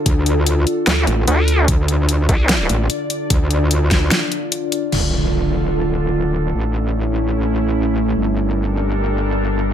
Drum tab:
CC |--------|--------|--------|x-------|
HH |xxxxxxxx|xxxxxxxx|xxxxxxxx|--------|
SD |----o---|----o---|---oo---|--------|
BD |o-------|o--o----|o--o----|--------|

CC |--------|--------|
HH |--------|--------|
SD |--------|--------|
BD |--------|--------|